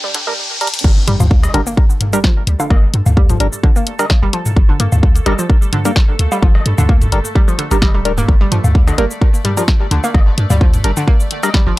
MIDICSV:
0, 0, Header, 1, 9, 480
1, 0, Start_track
1, 0, Key_signature, -2, "minor"
1, 0, Tempo, 465116
1, 870, Time_signature, 4, 2, 24, 8
1, 12167, End_track
2, 0, Start_track
2, 0, Title_t, "Ambient pad"
2, 0, Program_c, 0, 92
2, 0, Note_on_c, 0, 62, 88
2, 0, Note_on_c, 0, 79, 79
2, 390, Note_off_c, 0, 62, 0
2, 391, Note_off_c, 0, 79, 0
2, 12167, End_track
3, 0, Start_track
3, 0, Title_t, "Synth texture"
3, 0, Program_c, 1, 99
3, 0, Note_on_c, 1, 57, 88
3, 0, Note_on_c, 1, 69, 89
3, 390, Note_off_c, 1, 57, 0
3, 390, Note_off_c, 1, 69, 0
3, 869, Note_on_c, 1, 57, 88
3, 869, Note_on_c, 1, 69, 92
3, 8549, Note_on_c, 1, 74, 91
3, 8576, Note_off_c, 1, 69, 0
3, 12167, Note_off_c, 1, 57, 0
3, 12167, Note_off_c, 1, 74, 0
3, 12167, End_track
4, 0, Start_track
4, 0, Title_t, "Synth stab"
4, 0, Program_c, 2, 62
4, 280, Note_on_c, 2, 55, 75
4, 280, Note_on_c, 2, 62, 68
4, 280, Note_on_c, 2, 70, 84
4, 342, Note_off_c, 2, 55, 0
4, 342, Note_off_c, 2, 62, 0
4, 342, Note_off_c, 2, 70, 0
4, 630, Note_on_c, 2, 55, 97
4, 630, Note_on_c, 2, 62, 90
4, 630, Note_on_c, 2, 70, 108
4, 703, Note_off_c, 2, 55, 0
4, 703, Note_off_c, 2, 62, 0
4, 703, Note_off_c, 2, 70, 0
4, 1589, Note_on_c, 2, 62, 89
4, 1590, Note_on_c, 2, 55, 99
4, 1590, Note_on_c, 2, 70, 106
4, 1663, Note_off_c, 2, 55, 0
4, 1663, Note_off_c, 2, 62, 0
4, 1663, Note_off_c, 2, 70, 0
4, 2200, Note_on_c, 2, 55, 85
4, 2201, Note_on_c, 2, 62, 77
4, 2201, Note_on_c, 2, 70, 95
4, 2262, Note_off_c, 2, 55, 0
4, 2262, Note_off_c, 2, 62, 0
4, 2262, Note_off_c, 2, 70, 0
4, 3511, Note_on_c, 2, 55, 78
4, 3511, Note_on_c, 2, 62, 71
4, 3511, Note_on_c, 2, 70, 85
4, 3583, Note_off_c, 2, 55, 0
4, 3583, Note_off_c, 2, 62, 0
4, 3583, Note_off_c, 2, 70, 0
4, 4121, Note_on_c, 2, 55, 100
4, 4121, Note_on_c, 2, 62, 89
4, 4121, Note_on_c, 2, 70, 110
4, 4182, Note_off_c, 2, 55, 0
4, 4182, Note_off_c, 2, 62, 0
4, 4182, Note_off_c, 2, 70, 0
4, 5430, Note_on_c, 2, 55, 102
4, 5430, Note_on_c, 2, 62, 92
4, 5430, Note_on_c, 2, 70, 112
4, 5503, Note_off_c, 2, 55, 0
4, 5503, Note_off_c, 2, 62, 0
4, 5503, Note_off_c, 2, 70, 0
4, 6040, Note_on_c, 2, 55, 87
4, 6040, Note_on_c, 2, 62, 77
4, 6040, Note_on_c, 2, 70, 93
4, 6102, Note_off_c, 2, 55, 0
4, 6102, Note_off_c, 2, 62, 0
4, 6102, Note_off_c, 2, 70, 0
4, 7351, Note_on_c, 2, 55, 77
4, 7351, Note_on_c, 2, 62, 71
4, 7351, Note_on_c, 2, 70, 88
4, 7423, Note_off_c, 2, 55, 0
4, 7423, Note_off_c, 2, 62, 0
4, 7424, Note_off_c, 2, 70, 0
4, 7960, Note_on_c, 2, 55, 76
4, 7960, Note_on_c, 2, 62, 70
4, 7960, Note_on_c, 2, 70, 84
4, 8022, Note_off_c, 2, 55, 0
4, 8022, Note_off_c, 2, 62, 0
4, 8022, Note_off_c, 2, 70, 0
4, 8310, Note_on_c, 2, 55, 99
4, 8310, Note_on_c, 2, 62, 92
4, 8310, Note_on_c, 2, 70, 110
4, 8383, Note_off_c, 2, 55, 0
4, 8383, Note_off_c, 2, 62, 0
4, 8383, Note_off_c, 2, 70, 0
4, 9269, Note_on_c, 2, 55, 100
4, 9270, Note_on_c, 2, 62, 90
4, 9270, Note_on_c, 2, 70, 110
4, 9343, Note_off_c, 2, 55, 0
4, 9343, Note_off_c, 2, 62, 0
4, 9343, Note_off_c, 2, 70, 0
4, 9880, Note_on_c, 2, 55, 86
4, 9880, Note_on_c, 2, 62, 78
4, 9880, Note_on_c, 2, 70, 95
4, 9942, Note_off_c, 2, 55, 0
4, 9942, Note_off_c, 2, 62, 0
4, 9942, Note_off_c, 2, 70, 0
4, 11189, Note_on_c, 2, 55, 76
4, 11189, Note_on_c, 2, 62, 73
4, 11189, Note_on_c, 2, 70, 87
4, 11262, Note_off_c, 2, 55, 0
4, 11263, Note_off_c, 2, 62, 0
4, 11263, Note_off_c, 2, 70, 0
4, 11799, Note_on_c, 2, 55, 99
4, 11799, Note_on_c, 2, 62, 91
4, 11799, Note_on_c, 2, 70, 107
4, 11861, Note_off_c, 2, 55, 0
4, 11861, Note_off_c, 2, 62, 0
4, 11861, Note_off_c, 2, 70, 0
4, 12167, End_track
5, 0, Start_track
5, 0, Title_t, "Synth arpeggio sound"
5, 0, Program_c, 3, 84
5, 40, Note_on_c, 3, 55, 80
5, 60, Note_off_c, 3, 55, 0
5, 150, Note_on_c, 3, 50, 77
5, 171, Note_off_c, 3, 50, 0
5, 280, Note_on_c, 3, 55, 79
5, 322, Note_off_c, 3, 55, 0
5, 1109, Note_on_c, 3, 55, 107
5, 1143, Note_off_c, 3, 55, 0
5, 1240, Note_on_c, 3, 53, 78
5, 1282, Note_off_c, 3, 53, 0
5, 1590, Note_on_c, 3, 50, 104
5, 1623, Note_off_c, 3, 50, 0
5, 1720, Note_on_c, 3, 58, 77
5, 1748, Note_off_c, 3, 58, 0
5, 2200, Note_on_c, 3, 55, 107
5, 2228, Note_off_c, 3, 55, 0
5, 2310, Note_on_c, 3, 53, 85
5, 2359, Note_off_c, 3, 53, 0
5, 2680, Note_on_c, 3, 50, 102
5, 2708, Note_off_c, 3, 50, 0
5, 2791, Note_on_c, 3, 58, 86
5, 2823, Note_off_c, 3, 58, 0
5, 3271, Note_on_c, 3, 55, 100
5, 3303, Note_off_c, 3, 55, 0
5, 3401, Note_on_c, 3, 53, 77
5, 3442, Note_off_c, 3, 53, 0
5, 3750, Note_on_c, 3, 50, 104
5, 3783, Note_off_c, 3, 50, 0
5, 3880, Note_on_c, 3, 58, 78
5, 3908, Note_off_c, 3, 58, 0
5, 4360, Note_on_c, 3, 55, 104
5, 4388, Note_off_c, 3, 55, 0
5, 4470, Note_on_c, 3, 53, 78
5, 4520, Note_off_c, 3, 53, 0
5, 4841, Note_on_c, 3, 50, 102
5, 4868, Note_off_c, 3, 50, 0
5, 4951, Note_on_c, 3, 58, 80
5, 4983, Note_off_c, 3, 58, 0
5, 5430, Note_on_c, 3, 55, 103
5, 5463, Note_off_c, 3, 55, 0
5, 5560, Note_on_c, 3, 53, 77
5, 5602, Note_off_c, 3, 53, 0
5, 5910, Note_on_c, 3, 50, 101
5, 5943, Note_off_c, 3, 50, 0
5, 6040, Note_on_c, 3, 58, 78
5, 6068, Note_off_c, 3, 58, 0
5, 6519, Note_on_c, 3, 55, 102
5, 6548, Note_off_c, 3, 55, 0
5, 6630, Note_on_c, 3, 53, 88
5, 6679, Note_off_c, 3, 53, 0
5, 6999, Note_on_c, 3, 50, 103
5, 7028, Note_off_c, 3, 50, 0
5, 7109, Note_on_c, 3, 58, 84
5, 7142, Note_off_c, 3, 58, 0
5, 7588, Note_on_c, 3, 55, 102
5, 7622, Note_off_c, 3, 55, 0
5, 7719, Note_on_c, 3, 53, 77
5, 7761, Note_off_c, 3, 53, 0
5, 7828, Note_on_c, 3, 50, 77
5, 7849, Note_off_c, 3, 50, 0
5, 7959, Note_on_c, 3, 55, 78
5, 8001, Note_off_c, 3, 55, 0
5, 8068, Note_on_c, 3, 55, 102
5, 8118, Note_off_c, 3, 55, 0
5, 8199, Note_on_c, 3, 55, 79
5, 8219, Note_off_c, 3, 55, 0
5, 8439, Note_on_c, 3, 58, 101
5, 8467, Note_off_c, 3, 58, 0
5, 8679, Note_on_c, 3, 55, 102
5, 8707, Note_off_c, 3, 55, 0
5, 8788, Note_on_c, 3, 53, 80
5, 8838, Note_off_c, 3, 53, 0
5, 9159, Note_on_c, 3, 50, 103
5, 9187, Note_off_c, 3, 50, 0
5, 9268, Note_on_c, 3, 58, 78
5, 9302, Note_off_c, 3, 58, 0
5, 9748, Note_on_c, 3, 55, 102
5, 9782, Note_off_c, 3, 55, 0
5, 9879, Note_on_c, 3, 53, 79
5, 9921, Note_off_c, 3, 53, 0
5, 10229, Note_on_c, 3, 50, 106
5, 10263, Note_off_c, 3, 50, 0
5, 10359, Note_on_c, 3, 58, 77
5, 10388, Note_off_c, 3, 58, 0
5, 10839, Note_on_c, 3, 55, 102
5, 10868, Note_off_c, 3, 55, 0
5, 10949, Note_on_c, 3, 53, 82
5, 10999, Note_off_c, 3, 53, 0
5, 11319, Note_on_c, 3, 50, 102
5, 11348, Note_off_c, 3, 50, 0
5, 11429, Note_on_c, 3, 58, 88
5, 11462, Note_off_c, 3, 58, 0
5, 11909, Note_on_c, 3, 55, 104
5, 11943, Note_off_c, 3, 55, 0
5, 12040, Note_on_c, 3, 53, 80
5, 12082, Note_off_c, 3, 53, 0
5, 12167, End_track
6, 0, Start_track
6, 0, Title_t, "Sub bass"
6, 0, Program_c, 4, 38
6, 870, Note_on_c, 4, 31, 100
6, 1029, Note_off_c, 4, 31, 0
6, 1111, Note_on_c, 4, 43, 105
6, 1192, Note_off_c, 4, 43, 0
6, 1241, Note_on_c, 4, 38, 84
6, 1525, Note_off_c, 4, 38, 0
6, 1590, Note_on_c, 4, 31, 86
6, 1672, Note_off_c, 4, 31, 0
6, 2550, Note_on_c, 4, 38, 94
6, 2632, Note_off_c, 4, 38, 0
6, 2791, Note_on_c, 4, 31, 100
6, 2949, Note_off_c, 4, 31, 0
6, 3030, Note_on_c, 4, 43, 104
6, 3112, Note_off_c, 4, 43, 0
6, 3161, Note_on_c, 4, 38, 85
6, 3445, Note_off_c, 4, 38, 0
6, 3511, Note_on_c, 4, 31, 86
6, 3592, Note_off_c, 4, 31, 0
6, 4361, Note_on_c, 4, 31, 85
6, 4430, Note_off_c, 4, 31, 0
6, 4711, Note_on_c, 4, 31, 101
6, 4869, Note_off_c, 4, 31, 0
6, 4951, Note_on_c, 4, 43, 106
6, 5033, Note_off_c, 4, 43, 0
6, 5082, Note_on_c, 4, 38, 85
6, 5366, Note_off_c, 4, 38, 0
6, 5432, Note_on_c, 4, 31, 88
6, 5513, Note_off_c, 4, 31, 0
6, 6391, Note_on_c, 4, 38, 94
6, 6473, Note_off_c, 4, 38, 0
6, 6631, Note_on_c, 4, 31, 101
6, 6789, Note_off_c, 4, 31, 0
6, 6870, Note_on_c, 4, 43, 104
6, 6952, Note_off_c, 4, 43, 0
6, 7001, Note_on_c, 4, 38, 84
6, 7285, Note_off_c, 4, 38, 0
6, 7351, Note_on_c, 4, 31, 88
6, 7432, Note_off_c, 4, 31, 0
6, 7959, Note_on_c, 4, 31, 80
6, 8199, Note_on_c, 4, 26, 81
6, 8214, Note_off_c, 4, 31, 0
6, 8484, Note_off_c, 4, 26, 0
6, 8550, Note_on_c, 4, 31, 105
6, 8709, Note_off_c, 4, 31, 0
6, 8788, Note_on_c, 4, 43, 104
6, 8871, Note_off_c, 4, 43, 0
6, 8919, Note_on_c, 4, 38, 85
6, 9204, Note_off_c, 4, 38, 0
6, 9270, Note_on_c, 4, 31, 87
6, 9352, Note_off_c, 4, 31, 0
6, 10229, Note_on_c, 4, 38, 94
6, 10312, Note_off_c, 4, 38, 0
6, 10470, Note_on_c, 4, 31, 102
6, 10628, Note_off_c, 4, 31, 0
6, 10710, Note_on_c, 4, 43, 106
6, 10792, Note_off_c, 4, 43, 0
6, 10839, Note_on_c, 4, 38, 84
6, 11124, Note_off_c, 4, 38, 0
6, 11190, Note_on_c, 4, 31, 87
6, 11272, Note_off_c, 4, 31, 0
6, 12040, Note_on_c, 4, 31, 87
6, 12110, Note_off_c, 4, 31, 0
6, 12167, End_track
7, 0, Start_track
7, 0, Title_t, "Impact"
7, 0, Program_c, 5, 103
7, 870, Note_on_c, 5, 60, 74
7, 2790, Note_off_c, 5, 60, 0
7, 12167, End_track
8, 0, Start_track
8, 0, Title_t, "Riser"
8, 0, Program_c, 6, 103
8, 0, Note_on_c, 6, 60, 76
8, 870, Note_off_c, 6, 60, 0
8, 12167, End_track
9, 0, Start_track
9, 0, Title_t, "Drums"
9, 149, Note_on_c, 9, 42, 96
9, 252, Note_off_c, 9, 42, 0
9, 630, Note_on_c, 9, 42, 56
9, 695, Note_off_c, 9, 42, 0
9, 695, Note_on_c, 9, 42, 68
9, 760, Note_off_c, 9, 42, 0
9, 760, Note_on_c, 9, 42, 76
9, 815, Note_off_c, 9, 42, 0
9, 815, Note_on_c, 9, 42, 85
9, 870, Note_on_c, 9, 49, 106
9, 871, Note_on_c, 9, 36, 121
9, 918, Note_off_c, 9, 42, 0
9, 973, Note_off_c, 9, 49, 0
9, 974, Note_off_c, 9, 36, 0
9, 1110, Note_on_c, 9, 42, 96
9, 1213, Note_off_c, 9, 42, 0
9, 1241, Note_on_c, 9, 45, 99
9, 1241, Note_on_c, 9, 69, 56
9, 1241, Note_on_c, 9, 77, 58
9, 1344, Note_off_c, 9, 45, 0
9, 1344, Note_off_c, 9, 69, 0
9, 1344, Note_off_c, 9, 77, 0
9, 1351, Note_on_c, 9, 36, 119
9, 1454, Note_off_c, 9, 36, 0
9, 1481, Note_on_c, 9, 42, 38
9, 1481, Note_on_c, 9, 56, 70
9, 1481, Note_on_c, 9, 69, 44
9, 1584, Note_off_c, 9, 42, 0
9, 1584, Note_off_c, 9, 56, 0
9, 1584, Note_off_c, 9, 69, 0
9, 1591, Note_on_c, 9, 42, 91
9, 1694, Note_off_c, 9, 42, 0
9, 1721, Note_on_c, 9, 69, 56
9, 1824, Note_off_c, 9, 69, 0
9, 1831, Note_on_c, 9, 36, 122
9, 1934, Note_off_c, 9, 36, 0
9, 1961, Note_on_c, 9, 69, 42
9, 2064, Note_off_c, 9, 69, 0
9, 2070, Note_on_c, 9, 42, 92
9, 2071, Note_on_c, 9, 45, 81
9, 2173, Note_off_c, 9, 42, 0
9, 2174, Note_off_c, 9, 45, 0
9, 2201, Note_on_c, 9, 42, 38
9, 2201, Note_on_c, 9, 69, 55
9, 2304, Note_off_c, 9, 42, 0
9, 2304, Note_off_c, 9, 69, 0
9, 2311, Note_on_c, 9, 36, 121
9, 2311, Note_on_c, 9, 38, 110
9, 2414, Note_off_c, 9, 36, 0
9, 2414, Note_off_c, 9, 38, 0
9, 2551, Note_on_c, 9, 42, 91
9, 2654, Note_off_c, 9, 42, 0
9, 2681, Note_on_c, 9, 69, 54
9, 2681, Note_on_c, 9, 77, 78
9, 2784, Note_off_c, 9, 69, 0
9, 2784, Note_off_c, 9, 77, 0
9, 2791, Note_on_c, 9, 36, 126
9, 2791, Note_on_c, 9, 56, 69
9, 2894, Note_off_c, 9, 36, 0
9, 2894, Note_off_c, 9, 56, 0
9, 3030, Note_on_c, 9, 42, 101
9, 3133, Note_off_c, 9, 42, 0
9, 3161, Note_on_c, 9, 45, 101
9, 3161, Note_on_c, 9, 69, 53
9, 3161, Note_on_c, 9, 77, 59
9, 3264, Note_off_c, 9, 45, 0
9, 3264, Note_off_c, 9, 69, 0
9, 3264, Note_off_c, 9, 77, 0
9, 3271, Note_on_c, 9, 36, 125
9, 3374, Note_off_c, 9, 36, 0
9, 3401, Note_on_c, 9, 42, 38
9, 3401, Note_on_c, 9, 69, 43
9, 3402, Note_on_c, 9, 45, 88
9, 3504, Note_off_c, 9, 42, 0
9, 3504, Note_off_c, 9, 69, 0
9, 3505, Note_off_c, 9, 45, 0
9, 3510, Note_on_c, 9, 42, 93
9, 3614, Note_off_c, 9, 42, 0
9, 3640, Note_on_c, 9, 69, 56
9, 3744, Note_off_c, 9, 69, 0
9, 3751, Note_on_c, 9, 36, 126
9, 3855, Note_off_c, 9, 36, 0
9, 3880, Note_on_c, 9, 69, 42
9, 3983, Note_off_c, 9, 69, 0
9, 3991, Note_on_c, 9, 42, 95
9, 4094, Note_off_c, 9, 42, 0
9, 4120, Note_on_c, 9, 42, 39
9, 4120, Note_on_c, 9, 69, 54
9, 4121, Note_on_c, 9, 56, 67
9, 4224, Note_off_c, 9, 42, 0
9, 4224, Note_off_c, 9, 56, 0
9, 4224, Note_off_c, 9, 69, 0
9, 4229, Note_on_c, 9, 38, 112
9, 4231, Note_on_c, 9, 36, 124
9, 4333, Note_off_c, 9, 38, 0
9, 4335, Note_off_c, 9, 36, 0
9, 4470, Note_on_c, 9, 42, 95
9, 4574, Note_off_c, 9, 42, 0
9, 4601, Note_on_c, 9, 45, 86
9, 4601, Note_on_c, 9, 69, 52
9, 4704, Note_off_c, 9, 45, 0
9, 4704, Note_off_c, 9, 69, 0
9, 4711, Note_on_c, 9, 36, 127
9, 4814, Note_off_c, 9, 36, 0
9, 4951, Note_on_c, 9, 42, 101
9, 5054, Note_off_c, 9, 42, 0
9, 5080, Note_on_c, 9, 69, 52
9, 5081, Note_on_c, 9, 45, 99
9, 5081, Note_on_c, 9, 77, 59
9, 5183, Note_off_c, 9, 69, 0
9, 5184, Note_off_c, 9, 45, 0
9, 5184, Note_off_c, 9, 77, 0
9, 5191, Note_on_c, 9, 36, 126
9, 5294, Note_off_c, 9, 36, 0
9, 5320, Note_on_c, 9, 42, 39
9, 5320, Note_on_c, 9, 69, 42
9, 5424, Note_off_c, 9, 42, 0
9, 5424, Note_off_c, 9, 69, 0
9, 5430, Note_on_c, 9, 42, 93
9, 5430, Note_on_c, 9, 56, 65
9, 5533, Note_off_c, 9, 42, 0
9, 5533, Note_off_c, 9, 56, 0
9, 5560, Note_on_c, 9, 69, 54
9, 5663, Note_off_c, 9, 69, 0
9, 5671, Note_on_c, 9, 36, 127
9, 5774, Note_off_c, 9, 36, 0
9, 5801, Note_on_c, 9, 69, 39
9, 5904, Note_off_c, 9, 69, 0
9, 5910, Note_on_c, 9, 42, 99
9, 5910, Note_on_c, 9, 45, 82
9, 6013, Note_off_c, 9, 42, 0
9, 6013, Note_off_c, 9, 45, 0
9, 6040, Note_on_c, 9, 42, 39
9, 6040, Note_on_c, 9, 69, 52
9, 6143, Note_off_c, 9, 42, 0
9, 6143, Note_off_c, 9, 69, 0
9, 6150, Note_on_c, 9, 38, 110
9, 6151, Note_on_c, 9, 36, 127
9, 6253, Note_off_c, 9, 38, 0
9, 6254, Note_off_c, 9, 36, 0
9, 6390, Note_on_c, 9, 42, 98
9, 6494, Note_off_c, 9, 42, 0
9, 6520, Note_on_c, 9, 69, 52
9, 6520, Note_on_c, 9, 77, 85
9, 6623, Note_off_c, 9, 69, 0
9, 6623, Note_off_c, 9, 77, 0
9, 6631, Note_on_c, 9, 36, 127
9, 6734, Note_off_c, 9, 36, 0
9, 6760, Note_on_c, 9, 56, 62
9, 6863, Note_off_c, 9, 56, 0
9, 6870, Note_on_c, 9, 42, 98
9, 6973, Note_off_c, 9, 42, 0
9, 6999, Note_on_c, 9, 45, 92
9, 6999, Note_on_c, 9, 77, 58
9, 7000, Note_on_c, 9, 69, 50
9, 7103, Note_off_c, 9, 45, 0
9, 7103, Note_off_c, 9, 69, 0
9, 7103, Note_off_c, 9, 77, 0
9, 7111, Note_on_c, 9, 36, 125
9, 7214, Note_off_c, 9, 36, 0
9, 7239, Note_on_c, 9, 45, 83
9, 7240, Note_on_c, 9, 42, 39
9, 7240, Note_on_c, 9, 69, 40
9, 7343, Note_off_c, 9, 42, 0
9, 7343, Note_off_c, 9, 45, 0
9, 7343, Note_off_c, 9, 69, 0
9, 7350, Note_on_c, 9, 42, 92
9, 7453, Note_off_c, 9, 42, 0
9, 7481, Note_on_c, 9, 69, 51
9, 7584, Note_off_c, 9, 69, 0
9, 7591, Note_on_c, 9, 36, 123
9, 7694, Note_off_c, 9, 36, 0
9, 7721, Note_on_c, 9, 69, 40
9, 7824, Note_off_c, 9, 69, 0
9, 7830, Note_on_c, 9, 42, 97
9, 7934, Note_off_c, 9, 42, 0
9, 7960, Note_on_c, 9, 42, 38
9, 7960, Note_on_c, 9, 69, 51
9, 8063, Note_off_c, 9, 42, 0
9, 8063, Note_off_c, 9, 69, 0
9, 8069, Note_on_c, 9, 38, 104
9, 8070, Note_on_c, 9, 36, 125
9, 8070, Note_on_c, 9, 56, 65
9, 8173, Note_off_c, 9, 36, 0
9, 8173, Note_off_c, 9, 38, 0
9, 8173, Note_off_c, 9, 56, 0
9, 8310, Note_on_c, 9, 42, 98
9, 8414, Note_off_c, 9, 42, 0
9, 8439, Note_on_c, 9, 45, 83
9, 8441, Note_on_c, 9, 69, 50
9, 8543, Note_off_c, 9, 45, 0
9, 8544, Note_off_c, 9, 69, 0
9, 8550, Note_on_c, 9, 36, 122
9, 8653, Note_off_c, 9, 36, 0
9, 8790, Note_on_c, 9, 42, 95
9, 8893, Note_off_c, 9, 42, 0
9, 8919, Note_on_c, 9, 45, 93
9, 8919, Note_on_c, 9, 77, 58
9, 8921, Note_on_c, 9, 69, 50
9, 9022, Note_off_c, 9, 45, 0
9, 9022, Note_off_c, 9, 77, 0
9, 9024, Note_off_c, 9, 69, 0
9, 9030, Note_on_c, 9, 36, 119
9, 9133, Note_off_c, 9, 36, 0
9, 9159, Note_on_c, 9, 56, 62
9, 9160, Note_on_c, 9, 42, 38
9, 9160, Note_on_c, 9, 69, 40
9, 9262, Note_off_c, 9, 56, 0
9, 9264, Note_off_c, 9, 42, 0
9, 9264, Note_off_c, 9, 69, 0
9, 9269, Note_on_c, 9, 42, 91
9, 9373, Note_off_c, 9, 42, 0
9, 9400, Note_on_c, 9, 69, 52
9, 9503, Note_off_c, 9, 69, 0
9, 9510, Note_on_c, 9, 36, 123
9, 9613, Note_off_c, 9, 36, 0
9, 9640, Note_on_c, 9, 69, 41
9, 9744, Note_off_c, 9, 69, 0
9, 9749, Note_on_c, 9, 45, 77
9, 9750, Note_on_c, 9, 42, 92
9, 9853, Note_off_c, 9, 42, 0
9, 9853, Note_off_c, 9, 45, 0
9, 9879, Note_on_c, 9, 42, 37
9, 9879, Note_on_c, 9, 69, 51
9, 9983, Note_off_c, 9, 42, 0
9, 9983, Note_off_c, 9, 69, 0
9, 9989, Note_on_c, 9, 38, 101
9, 9990, Note_on_c, 9, 36, 123
9, 10093, Note_off_c, 9, 36, 0
9, 10093, Note_off_c, 9, 38, 0
9, 10229, Note_on_c, 9, 42, 93
9, 10332, Note_off_c, 9, 42, 0
9, 10358, Note_on_c, 9, 77, 80
9, 10360, Note_on_c, 9, 69, 52
9, 10462, Note_off_c, 9, 77, 0
9, 10463, Note_off_c, 9, 69, 0
9, 10469, Note_on_c, 9, 56, 66
9, 10470, Note_on_c, 9, 36, 117
9, 10572, Note_off_c, 9, 56, 0
9, 10573, Note_off_c, 9, 36, 0
9, 10709, Note_on_c, 9, 42, 92
9, 10812, Note_off_c, 9, 42, 0
9, 10839, Note_on_c, 9, 45, 88
9, 10839, Note_on_c, 9, 77, 55
9, 10840, Note_on_c, 9, 69, 53
9, 10942, Note_off_c, 9, 45, 0
9, 10942, Note_off_c, 9, 77, 0
9, 10943, Note_off_c, 9, 69, 0
9, 10950, Note_on_c, 9, 36, 118
9, 11053, Note_off_c, 9, 36, 0
9, 11079, Note_on_c, 9, 42, 36
9, 11079, Note_on_c, 9, 45, 79
9, 11079, Note_on_c, 9, 69, 43
9, 11182, Note_off_c, 9, 42, 0
9, 11182, Note_off_c, 9, 45, 0
9, 11182, Note_off_c, 9, 69, 0
9, 11188, Note_on_c, 9, 42, 86
9, 11292, Note_off_c, 9, 42, 0
9, 11319, Note_on_c, 9, 69, 54
9, 11422, Note_off_c, 9, 69, 0
9, 11430, Note_on_c, 9, 36, 118
9, 11533, Note_off_c, 9, 36, 0
9, 11559, Note_on_c, 9, 69, 42
9, 11662, Note_off_c, 9, 69, 0
9, 11669, Note_on_c, 9, 42, 91
9, 11772, Note_off_c, 9, 42, 0
9, 11799, Note_on_c, 9, 42, 35
9, 11799, Note_on_c, 9, 56, 66
9, 11799, Note_on_c, 9, 69, 53
9, 11902, Note_off_c, 9, 42, 0
9, 11902, Note_off_c, 9, 56, 0
9, 11902, Note_off_c, 9, 69, 0
9, 11909, Note_on_c, 9, 38, 100
9, 11910, Note_on_c, 9, 36, 118
9, 12012, Note_off_c, 9, 38, 0
9, 12013, Note_off_c, 9, 36, 0
9, 12167, End_track
0, 0, End_of_file